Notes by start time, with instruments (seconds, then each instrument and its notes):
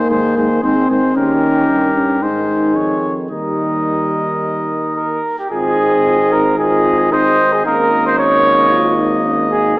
Already playing: french horn A#3, trumpet C5
0.10 tuba G#2, trombone D#3, flugelhorn G#4, trumpet C5
0.37 tuba G#2, trombone D#3, flugelhorn G#4, trumpet C5
0.62 tuba G#2, trombone D#3, french horn C4, flugelhorn G#4, trumpet C5
0.89 tuba G#2, trombone D#3, flugelhorn G#4, trumpet C5
1.16 tuba D#2, trombone D#3, french horn C#4, flugelhorn G4, trumpet A#4
1.69 tuba G2
1.95 french horn C#4
2.22 tuba G#2, trombone D#3, french horn D#4, flugelhorn G#4, trumpet C5
2.76 tuba F2, trumpet C#5
3.31 tuba D#2, trombone D#3, french horn G3, flugelhorn A#4, trumpet D#5
4.96 flugelhorn A#4
5.38 flugelhorn G4
5.50 tuba G#1, trombone C4, french horn F4, flugelhorn G#4, trumpet D#5
5.78 french horn D#4
6.05 french horn F4
6.32 french horn D#4, flugelhorn A#4
6.58 trombone C4, french horn F4, flugelhorn G#4, trumpet D#5
6.99 flugelhorn G#4
7.12 trombone C4, french horn D#4, flugelhorn C5, trumpet D#5
7.53 flugelhorn G#4
7.65 tuba G#1, trombone A#3, french horn C#4, flugelhorn A#4, trumpet D#5
8.06 flugelhorn C5
8.19 trombone A#3, flugelhorn C#5, trumpet D#5
8.72 french horn F4
8.99 french horn D#4
9.26 french horn C#4
9.52 french horn D#4, flugelhorn G#4